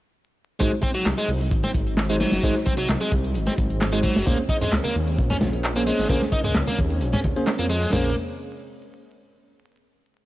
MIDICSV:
0, 0, Header, 1, 6, 480
1, 0, Start_track
1, 0, Key_signature, -5, "minor"
1, 0, Tempo, 458015
1, 631, Time_signature, 4, 2, 24, 8
1, 10746, End_track
2, 0, Start_track
2, 0, Title_t, "Tine electric piano"
2, 0, Program_c, 0, 4
2, 629, Note_on_c, 0, 66, 81
2, 630, Note_on_c, 0, 56, 83
2, 630, Note_on_c, 0, 63, 77
2, 630, Note_on_c, 0, 72, 93
2, 778, Note_off_c, 0, 63, 0
2, 778, Note_off_c, 0, 66, 0
2, 778, Note_off_c, 0, 72, 0
2, 779, Note_off_c, 0, 56, 0
2, 2197, Note_on_c, 0, 56, 76
2, 2198, Note_on_c, 0, 72, 84
2, 2199, Note_on_c, 0, 66, 73
2, 2200, Note_on_c, 0, 63, 72
2, 2426, Note_off_c, 0, 56, 0
2, 2426, Note_off_c, 0, 72, 0
2, 2427, Note_off_c, 0, 63, 0
2, 2427, Note_off_c, 0, 66, 0
2, 2556, Note_on_c, 0, 63, 79
2, 2556, Note_on_c, 0, 66, 77
2, 2556, Note_on_c, 0, 72, 94
2, 2557, Note_on_c, 0, 56, 89
2, 2701, Note_off_c, 0, 66, 0
2, 2702, Note_off_c, 0, 56, 0
2, 2702, Note_off_c, 0, 63, 0
2, 2702, Note_off_c, 0, 72, 0
2, 4118, Note_on_c, 0, 56, 79
2, 4118, Note_on_c, 0, 72, 86
2, 4119, Note_on_c, 0, 63, 72
2, 4119, Note_on_c, 0, 66, 72
2, 4346, Note_off_c, 0, 56, 0
2, 4346, Note_off_c, 0, 72, 0
2, 4347, Note_off_c, 0, 63, 0
2, 4347, Note_off_c, 0, 66, 0
2, 4472, Note_on_c, 0, 58, 87
2, 4472, Note_on_c, 0, 68, 79
2, 4472, Note_on_c, 0, 72, 95
2, 4473, Note_on_c, 0, 61, 80
2, 4619, Note_off_c, 0, 68, 0
2, 4619, Note_off_c, 0, 72, 0
2, 4620, Note_off_c, 0, 58, 0
2, 4620, Note_off_c, 0, 61, 0
2, 6038, Note_on_c, 0, 58, 80
2, 6038, Note_on_c, 0, 72, 90
2, 6039, Note_on_c, 0, 61, 73
2, 6039, Note_on_c, 0, 68, 71
2, 6266, Note_off_c, 0, 58, 0
2, 6266, Note_off_c, 0, 72, 0
2, 6267, Note_off_c, 0, 61, 0
2, 6267, Note_off_c, 0, 68, 0
2, 6389, Note_on_c, 0, 61, 81
2, 6391, Note_on_c, 0, 58, 92
2, 6391, Note_on_c, 0, 68, 80
2, 6391, Note_on_c, 0, 72, 99
2, 6538, Note_off_c, 0, 61, 0
2, 6539, Note_off_c, 0, 58, 0
2, 6539, Note_off_c, 0, 68, 0
2, 6539, Note_off_c, 0, 72, 0
2, 7717, Note_on_c, 0, 58, 89
2, 7717, Note_on_c, 0, 68, 80
2, 7717, Note_on_c, 0, 72, 98
2, 7718, Note_on_c, 0, 61, 82
2, 7855, Note_off_c, 0, 68, 0
2, 7856, Note_off_c, 0, 58, 0
2, 7856, Note_off_c, 0, 61, 0
2, 7856, Note_off_c, 0, 72, 0
2, 8313, Note_on_c, 0, 58, 90
2, 8314, Note_on_c, 0, 61, 81
2, 8314, Note_on_c, 0, 68, 80
2, 8314, Note_on_c, 0, 72, 96
2, 8493, Note_off_c, 0, 58, 0
2, 8493, Note_off_c, 0, 68, 0
2, 8493, Note_off_c, 0, 72, 0
2, 8494, Note_off_c, 0, 61, 0
2, 10746, End_track
3, 0, Start_track
3, 0, Title_t, "Analog synth pad"
3, 0, Program_c, 1, 89
3, 626, Note_on_c, 1, 56, 73
3, 627, Note_on_c, 1, 54, 70
3, 628, Note_on_c, 1, 60, 82
3, 629, Note_on_c, 1, 63, 85
3, 4431, Note_off_c, 1, 54, 0
3, 4431, Note_off_c, 1, 63, 0
3, 4473, Note_on_c, 1, 61, 88
3, 4474, Note_on_c, 1, 58, 73
3, 8266, Note_off_c, 1, 56, 0
3, 8268, Note_off_c, 1, 60, 0
3, 8274, Note_off_c, 1, 58, 0
3, 8274, Note_off_c, 1, 61, 0
3, 8312, Note_on_c, 1, 58, 67
3, 8313, Note_on_c, 1, 61, 81
3, 8314, Note_on_c, 1, 48, 75
3, 8317, Note_on_c, 1, 56, 67
3, 8535, Note_off_c, 1, 58, 0
3, 8535, Note_off_c, 1, 61, 0
3, 8536, Note_off_c, 1, 48, 0
3, 8538, Note_off_c, 1, 56, 0
3, 10746, End_track
4, 0, Start_track
4, 0, Title_t, "Overdriven electric guitar"
4, 0, Program_c, 2, 29
4, 626, Note_on_c, 2, 56, 83
4, 739, Note_off_c, 2, 56, 0
4, 868, Note_on_c, 2, 60, 102
4, 936, Note_off_c, 2, 60, 0
4, 992, Note_on_c, 2, 54, 76
4, 1103, Note_off_c, 2, 54, 0
4, 1236, Note_on_c, 2, 56, 78
4, 1344, Note_off_c, 2, 56, 0
4, 1717, Note_on_c, 2, 60, 75
4, 1777, Note_off_c, 2, 60, 0
4, 2198, Note_on_c, 2, 56, 79
4, 2257, Note_off_c, 2, 56, 0
4, 2312, Note_on_c, 2, 54, 101
4, 2540, Note_off_c, 2, 54, 0
4, 2550, Note_on_c, 2, 56, 82
4, 2661, Note_off_c, 2, 56, 0
4, 2789, Note_on_c, 2, 60, 105
4, 2856, Note_off_c, 2, 60, 0
4, 2912, Note_on_c, 2, 54, 78
4, 3023, Note_off_c, 2, 54, 0
4, 3153, Note_on_c, 2, 56, 77
4, 3263, Note_off_c, 2, 56, 0
4, 3634, Note_on_c, 2, 60, 76
4, 3695, Note_off_c, 2, 60, 0
4, 4113, Note_on_c, 2, 56, 80
4, 4175, Note_off_c, 2, 56, 0
4, 4223, Note_on_c, 2, 54, 104
4, 4456, Note_off_c, 2, 54, 0
4, 4466, Note_on_c, 2, 58, 83
4, 4579, Note_off_c, 2, 58, 0
4, 4710, Note_on_c, 2, 63, 104
4, 4777, Note_off_c, 2, 63, 0
4, 4836, Note_on_c, 2, 56, 77
4, 4944, Note_off_c, 2, 56, 0
4, 5073, Note_on_c, 2, 58, 82
4, 5183, Note_off_c, 2, 58, 0
4, 5556, Note_on_c, 2, 61, 77
4, 5616, Note_off_c, 2, 61, 0
4, 6035, Note_on_c, 2, 58, 84
4, 6096, Note_off_c, 2, 58, 0
4, 6150, Note_on_c, 2, 56, 105
4, 6379, Note_off_c, 2, 56, 0
4, 6387, Note_on_c, 2, 58, 84
4, 6499, Note_off_c, 2, 58, 0
4, 6627, Note_on_c, 2, 63, 106
4, 6695, Note_off_c, 2, 63, 0
4, 6754, Note_on_c, 2, 56, 81
4, 6864, Note_off_c, 2, 56, 0
4, 6995, Note_on_c, 2, 58, 79
4, 7104, Note_off_c, 2, 58, 0
4, 7474, Note_on_c, 2, 61, 80
4, 7535, Note_off_c, 2, 61, 0
4, 7953, Note_on_c, 2, 58, 81
4, 8015, Note_off_c, 2, 58, 0
4, 8065, Note_on_c, 2, 56, 101
4, 8297, Note_off_c, 2, 56, 0
4, 8306, Note_on_c, 2, 58, 94
4, 8531, Note_off_c, 2, 58, 0
4, 10746, End_track
5, 0, Start_track
5, 0, Title_t, "Detuned saw bass"
5, 0, Program_c, 3, 39
5, 636, Note_on_c, 3, 32, 102
5, 710, Note_off_c, 3, 32, 0
5, 1110, Note_on_c, 3, 36, 104
5, 1187, Note_off_c, 3, 36, 0
5, 1344, Note_on_c, 3, 36, 103
5, 1586, Note_on_c, 3, 32, 92
5, 1602, Note_off_c, 3, 36, 0
5, 1739, Note_off_c, 3, 32, 0
5, 1829, Note_on_c, 3, 32, 93
5, 2357, Note_off_c, 3, 32, 0
5, 2438, Note_on_c, 3, 30, 97
5, 2507, Note_off_c, 3, 30, 0
5, 2550, Note_on_c, 3, 32, 102
5, 2627, Note_off_c, 3, 32, 0
5, 2916, Note_on_c, 3, 36, 44
5, 3007, Note_off_c, 3, 36, 0
5, 3031, Note_on_c, 3, 36, 103
5, 3108, Note_off_c, 3, 36, 0
5, 3269, Note_on_c, 3, 36, 104
5, 3510, Note_on_c, 3, 32, 91
5, 3525, Note_off_c, 3, 36, 0
5, 3661, Note_off_c, 3, 32, 0
5, 3753, Note_on_c, 3, 32, 95
5, 4279, Note_off_c, 3, 32, 0
5, 4361, Note_on_c, 3, 30, 100
5, 4428, Note_off_c, 3, 30, 0
5, 4478, Note_on_c, 3, 34, 103
5, 4551, Note_off_c, 3, 34, 0
5, 4953, Note_on_c, 3, 37, 106
5, 5029, Note_off_c, 3, 37, 0
5, 5195, Note_on_c, 3, 39, 102
5, 5434, Note_on_c, 3, 34, 89
5, 5450, Note_off_c, 3, 39, 0
5, 5583, Note_off_c, 3, 34, 0
5, 5675, Note_on_c, 3, 34, 93
5, 6200, Note_off_c, 3, 34, 0
5, 6279, Note_on_c, 3, 32, 100
5, 6347, Note_off_c, 3, 32, 0
5, 6386, Note_on_c, 3, 34, 104
5, 6465, Note_off_c, 3, 34, 0
5, 6755, Note_on_c, 3, 37, 44
5, 6847, Note_off_c, 3, 37, 0
5, 6871, Note_on_c, 3, 37, 108
5, 6947, Note_off_c, 3, 37, 0
5, 7114, Note_on_c, 3, 39, 102
5, 7350, Note_on_c, 3, 34, 96
5, 7366, Note_off_c, 3, 39, 0
5, 7501, Note_off_c, 3, 34, 0
5, 7957, Note_on_c, 3, 41, 98
5, 8239, Note_off_c, 3, 41, 0
5, 8309, Note_on_c, 3, 34, 102
5, 8533, Note_off_c, 3, 34, 0
5, 10746, End_track
6, 0, Start_track
6, 0, Title_t, "Drums"
6, 629, Note_on_c, 9, 42, 45
6, 632, Note_off_c, 9, 42, 0
6, 632, Note_on_c, 9, 42, 79
6, 635, Note_on_c, 9, 36, 109
6, 737, Note_off_c, 9, 42, 0
6, 740, Note_off_c, 9, 36, 0
6, 756, Note_on_c, 9, 42, 20
6, 861, Note_off_c, 9, 42, 0
6, 867, Note_on_c, 9, 36, 97
6, 868, Note_on_c, 9, 42, 75
6, 873, Note_off_c, 9, 42, 0
6, 873, Note_on_c, 9, 42, 75
6, 972, Note_off_c, 9, 36, 0
6, 978, Note_off_c, 9, 42, 0
6, 996, Note_on_c, 9, 42, 31
6, 1101, Note_off_c, 9, 42, 0
6, 1111, Note_on_c, 9, 39, 104
6, 1111, Note_on_c, 9, 42, 44
6, 1113, Note_off_c, 9, 42, 0
6, 1113, Note_on_c, 9, 42, 97
6, 1114, Note_on_c, 9, 38, 110
6, 1215, Note_off_c, 9, 39, 0
6, 1218, Note_off_c, 9, 42, 0
6, 1219, Note_off_c, 9, 38, 0
6, 1236, Note_on_c, 9, 42, 22
6, 1341, Note_off_c, 9, 42, 0
6, 1352, Note_on_c, 9, 42, 74
6, 1353, Note_on_c, 9, 46, 77
6, 1457, Note_off_c, 9, 42, 0
6, 1458, Note_off_c, 9, 46, 0
6, 1478, Note_on_c, 9, 42, 34
6, 1583, Note_off_c, 9, 42, 0
6, 1586, Note_on_c, 9, 36, 118
6, 1591, Note_on_c, 9, 42, 43
6, 1594, Note_off_c, 9, 42, 0
6, 1594, Note_on_c, 9, 42, 89
6, 1691, Note_off_c, 9, 36, 0
6, 1699, Note_off_c, 9, 42, 0
6, 1715, Note_on_c, 9, 38, 48
6, 1718, Note_on_c, 9, 42, 22
6, 1820, Note_off_c, 9, 38, 0
6, 1823, Note_off_c, 9, 42, 0
6, 1828, Note_on_c, 9, 36, 103
6, 1831, Note_on_c, 9, 42, 74
6, 1832, Note_off_c, 9, 42, 0
6, 1832, Note_on_c, 9, 42, 77
6, 1933, Note_off_c, 9, 36, 0
6, 1937, Note_off_c, 9, 42, 0
6, 1954, Note_on_c, 9, 42, 47
6, 1960, Note_off_c, 9, 42, 0
6, 1960, Note_on_c, 9, 42, 33
6, 2064, Note_on_c, 9, 38, 119
6, 2065, Note_off_c, 9, 42, 0
6, 2068, Note_on_c, 9, 42, 91
6, 2073, Note_off_c, 9, 42, 0
6, 2073, Note_on_c, 9, 39, 106
6, 2073, Note_on_c, 9, 42, 45
6, 2169, Note_off_c, 9, 38, 0
6, 2178, Note_off_c, 9, 39, 0
6, 2178, Note_off_c, 9, 42, 0
6, 2200, Note_on_c, 9, 42, 24
6, 2305, Note_off_c, 9, 42, 0
6, 2306, Note_on_c, 9, 42, 71
6, 2311, Note_on_c, 9, 38, 101
6, 2313, Note_off_c, 9, 42, 0
6, 2313, Note_on_c, 9, 42, 81
6, 2416, Note_off_c, 9, 38, 0
6, 2418, Note_off_c, 9, 42, 0
6, 2430, Note_on_c, 9, 38, 105
6, 2431, Note_on_c, 9, 42, 82
6, 2442, Note_off_c, 9, 42, 0
6, 2442, Note_on_c, 9, 42, 34
6, 2535, Note_off_c, 9, 38, 0
6, 2546, Note_off_c, 9, 42, 0
6, 2551, Note_on_c, 9, 36, 115
6, 2554, Note_on_c, 9, 42, 92
6, 2556, Note_off_c, 9, 42, 0
6, 2556, Note_on_c, 9, 42, 46
6, 2656, Note_off_c, 9, 36, 0
6, 2661, Note_off_c, 9, 42, 0
6, 2673, Note_on_c, 9, 38, 42
6, 2681, Note_on_c, 9, 42, 21
6, 2778, Note_off_c, 9, 38, 0
6, 2785, Note_off_c, 9, 42, 0
6, 2785, Note_on_c, 9, 42, 73
6, 2794, Note_off_c, 9, 42, 0
6, 2794, Note_on_c, 9, 42, 78
6, 2795, Note_on_c, 9, 36, 105
6, 2899, Note_off_c, 9, 42, 0
6, 2900, Note_off_c, 9, 36, 0
6, 2919, Note_on_c, 9, 42, 32
6, 3024, Note_off_c, 9, 42, 0
6, 3025, Note_on_c, 9, 42, 93
6, 3032, Note_on_c, 9, 38, 119
6, 3033, Note_off_c, 9, 42, 0
6, 3033, Note_on_c, 9, 39, 106
6, 3033, Note_on_c, 9, 42, 45
6, 3137, Note_off_c, 9, 38, 0
6, 3138, Note_off_c, 9, 39, 0
6, 3138, Note_off_c, 9, 42, 0
6, 3159, Note_on_c, 9, 42, 23
6, 3264, Note_off_c, 9, 42, 0
6, 3269, Note_on_c, 9, 36, 99
6, 3271, Note_on_c, 9, 42, 78
6, 3274, Note_off_c, 9, 42, 0
6, 3274, Note_on_c, 9, 42, 74
6, 3374, Note_off_c, 9, 36, 0
6, 3379, Note_off_c, 9, 42, 0
6, 3400, Note_on_c, 9, 42, 33
6, 3503, Note_off_c, 9, 42, 0
6, 3503, Note_on_c, 9, 42, 87
6, 3513, Note_off_c, 9, 42, 0
6, 3513, Note_on_c, 9, 42, 45
6, 3617, Note_off_c, 9, 42, 0
6, 3638, Note_on_c, 9, 42, 22
6, 3641, Note_on_c, 9, 38, 51
6, 3743, Note_off_c, 9, 42, 0
6, 3746, Note_off_c, 9, 38, 0
6, 3750, Note_on_c, 9, 42, 66
6, 3752, Note_on_c, 9, 36, 100
6, 3753, Note_off_c, 9, 42, 0
6, 3753, Note_on_c, 9, 42, 81
6, 3857, Note_off_c, 9, 36, 0
6, 3858, Note_off_c, 9, 42, 0
6, 3879, Note_on_c, 9, 42, 32
6, 3984, Note_off_c, 9, 42, 0
6, 3995, Note_on_c, 9, 39, 114
6, 3995, Note_on_c, 9, 42, 47
6, 3998, Note_off_c, 9, 42, 0
6, 3998, Note_on_c, 9, 38, 109
6, 3998, Note_on_c, 9, 42, 91
6, 4099, Note_off_c, 9, 39, 0
6, 4103, Note_off_c, 9, 38, 0
6, 4103, Note_off_c, 9, 42, 0
6, 4118, Note_on_c, 9, 42, 24
6, 4223, Note_off_c, 9, 42, 0
6, 4232, Note_on_c, 9, 36, 81
6, 4232, Note_on_c, 9, 42, 81
6, 4239, Note_off_c, 9, 42, 0
6, 4239, Note_on_c, 9, 42, 65
6, 4337, Note_off_c, 9, 36, 0
6, 4344, Note_off_c, 9, 42, 0
6, 4358, Note_on_c, 9, 42, 34
6, 4360, Note_off_c, 9, 42, 0
6, 4360, Note_on_c, 9, 42, 88
6, 4362, Note_on_c, 9, 38, 111
6, 4464, Note_off_c, 9, 42, 0
6, 4467, Note_off_c, 9, 38, 0
6, 4472, Note_on_c, 9, 42, 44
6, 4476, Note_off_c, 9, 42, 0
6, 4476, Note_on_c, 9, 42, 83
6, 4476, Note_on_c, 9, 63, 101
6, 4477, Note_on_c, 9, 36, 109
6, 4580, Note_off_c, 9, 63, 0
6, 4581, Note_off_c, 9, 42, 0
6, 4582, Note_off_c, 9, 36, 0
6, 4598, Note_on_c, 9, 42, 20
6, 4703, Note_off_c, 9, 42, 0
6, 4705, Note_on_c, 9, 36, 100
6, 4706, Note_on_c, 9, 42, 77
6, 4714, Note_off_c, 9, 42, 0
6, 4714, Note_on_c, 9, 42, 73
6, 4809, Note_off_c, 9, 36, 0
6, 4818, Note_off_c, 9, 42, 0
6, 4838, Note_on_c, 9, 42, 32
6, 4841, Note_on_c, 9, 64, 88
6, 4943, Note_off_c, 9, 42, 0
6, 4946, Note_off_c, 9, 64, 0
6, 4947, Note_on_c, 9, 42, 85
6, 4952, Note_off_c, 9, 42, 0
6, 4952, Note_on_c, 9, 39, 111
6, 4952, Note_on_c, 9, 42, 42
6, 4956, Note_on_c, 9, 38, 123
6, 5057, Note_off_c, 9, 39, 0
6, 5057, Note_off_c, 9, 42, 0
6, 5061, Note_off_c, 9, 38, 0
6, 5078, Note_on_c, 9, 42, 22
6, 5084, Note_on_c, 9, 63, 67
6, 5183, Note_off_c, 9, 42, 0
6, 5189, Note_off_c, 9, 63, 0
6, 5189, Note_on_c, 9, 46, 78
6, 5192, Note_on_c, 9, 42, 75
6, 5293, Note_off_c, 9, 46, 0
6, 5297, Note_off_c, 9, 42, 0
6, 5319, Note_on_c, 9, 42, 35
6, 5424, Note_off_c, 9, 42, 0
6, 5433, Note_on_c, 9, 42, 92
6, 5434, Note_off_c, 9, 42, 0
6, 5434, Note_on_c, 9, 36, 107
6, 5434, Note_on_c, 9, 42, 44
6, 5539, Note_off_c, 9, 36, 0
6, 5539, Note_off_c, 9, 42, 0
6, 5559, Note_on_c, 9, 38, 51
6, 5559, Note_on_c, 9, 42, 22
6, 5561, Note_on_c, 9, 64, 86
6, 5664, Note_off_c, 9, 38, 0
6, 5664, Note_off_c, 9, 42, 0
6, 5666, Note_off_c, 9, 64, 0
6, 5666, Note_on_c, 9, 42, 84
6, 5668, Note_on_c, 9, 38, 110
6, 5671, Note_on_c, 9, 63, 87
6, 5672, Note_off_c, 9, 42, 0
6, 5672, Note_on_c, 9, 42, 77
6, 5773, Note_off_c, 9, 38, 0
6, 5776, Note_off_c, 9, 63, 0
6, 5777, Note_off_c, 9, 42, 0
6, 5799, Note_on_c, 9, 42, 32
6, 5903, Note_off_c, 9, 42, 0
6, 5913, Note_on_c, 9, 39, 116
6, 5913, Note_on_c, 9, 42, 44
6, 5915, Note_on_c, 9, 46, 72
6, 6018, Note_off_c, 9, 39, 0
6, 6018, Note_off_c, 9, 42, 0
6, 6020, Note_off_c, 9, 46, 0
6, 6037, Note_on_c, 9, 42, 23
6, 6142, Note_off_c, 9, 42, 0
6, 6146, Note_on_c, 9, 42, 68
6, 6151, Note_off_c, 9, 42, 0
6, 6151, Note_on_c, 9, 42, 79
6, 6256, Note_off_c, 9, 42, 0
6, 6279, Note_on_c, 9, 42, 34
6, 6282, Note_on_c, 9, 38, 42
6, 6384, Note_off_c, 9, 42, 0
6, 6386, Note_off_c, 9, 38, 0
6, 6387, Note_on_c, 9, 36, 119
6, 6388, Note_on_c, 9, 42, 84
6, 6391, Note_off_c, 9, 42, 0
6, 6391, Note_on_c, 9, 42, 44
6, 6395, Note_on_c, 9, 63, 99
6, 6492, Note_off_c, 9, 36, 0
6, 6496, Note_off_c, 9, 42, 0
6, 6499, Note_off_c, 9, 63, 0
6, 6515, Note_on_c, 9, 42, 20
6, 6519, Note_on_c, 9, 38, 47
6, 6620, Note_off_c, 9, 42, 0
6, 6624, Note_off_c, 9, 38, 0
6, 6627, Note_on_c, 9, 36, 105
6, 6629, Note_on_c, 9, 42, 70
6, 6630, Note_off_c, 9, 42, 0
6, 6630, Note_on_c, 9, 42, 73
6, 6732, Note_off_c, 9, 36, 0
6, 6735, Note_off_c, 9, 42, 0
6, 6751, Note_on_c, 9, 64, 84
6, 6756, Note_on_c, 9, 42, 30
6, 6855, Note_off_c, 9, 64, 0
6, 6860, Note_on_c, 9, 38, 127
6, 6861, Note_off_c, 9, 42, 0
6, 6863, Note_on_c, 9, 42, 91
6, 6870, Note_off_c, 9, 42, 0
6, 6870, Note_on_c, 9, 39, 110
6, 6870, Note_on_c, 9, 42, 44
6, 6965, Note_off_c, 9, 38, 0
6, 6975, Note_off_c, 9, 39, 0
6, 6975, Note_off_c, 9, 42, 0
6, 6995, Note_on_c, 9, 42, 21
6, 6998, Note_on_c, 9, 63, 67
6, 7099, Note_off_c, 9, 42, 0
6, 7102, Note_off_c, 9, 63, 0
6, 7106, Note_on_c, 9, 42, 75
6, 7111, Note_off_c, 9, 42, 0
6, 7111, Note_on_c, 9, 42, 71
6, 7112, Note_on_c, 9, 36, 100
6, 7216, Note_off_c, 9, 36, 0
6, 7216, Note_off_c, 9, 42, 0
6, 7233, Note_on_c, 9, 42, 31
6, 7338, Note_off_c, 9, 42, 0
6, 7345, Note_on_c, 9, 42, 95
6, 7348, Note_off_c, 9, 42, 0
6, 7348, Note_on_c, 9, 42, 42
6, 7453, Note_off_c, 9, 42, 0
6, 7473, Note_on_c, 9, 38, 55
6, 7475, Note_on_c, 9, 42, 21
6, 7479, Note_on_c, 9, 64, 79
6, 7578, Note_off_c, 9, 38, 0
6, 7580, Note_off_c, 9, 42, 0
6, 7584, Note_off_c, 9, 64, 0
6, 7588, Note_on_c, 9, 42, 77
6, 7590, Note_on_c, 9, 36, 83
6, 7595, Note_on_c, 9, 63, 93
6, 7693, Note_off_c, 9, 42, 0
6, 7695, Note_off_c, 9, 36, 0
6, 7700, Note_off_c, 9, 63, 0
6, 7716, Note_on_c, 9, 42, 31
6, 7821, Note_off_c, 9, 42, 0
6, 7829, Note_on_c, 9, 39, 113
6, 7829, Note_on_c, 9, 42, 44
6, 7830, Note_on_c, 9, 38, 102
6, 7831, Note_off_c, 9, 42, 0
6, 7831, Note_on_c, 9, 42, 90
6, 7934, Note_off_c, 9, 39, 0
6, 7935, Note_off_c, 9, 38, 0
6, 7936, Note_off_c, 9, 42, 0
6, 7957, Note_on_c, 9, 42, 23
6, 8058, Note_on_c, 9, 46, 79
6, 8062, Note_off_c, 9, 42, 0
6, 8068, Note_on_c, 9, 42, 77
6, 8163, Note_off_c, 9, 46, 0
6, 8173, Note_off_c, 9, 42, 0
6, 8197, Note_on_c, 9, 42, 32
6, 8302, Note_off_c, 9, 42, 0
6, 8309, Note_on_c, 9, 38, 104
6, 8309, Note_on_c, 9, 43, 104
6, 8414, Note_off_c, 9, 38, 0
6, 8414, Note_off_c, 9, 43, 0
6, 10746, End_track
0, 0, End_of_file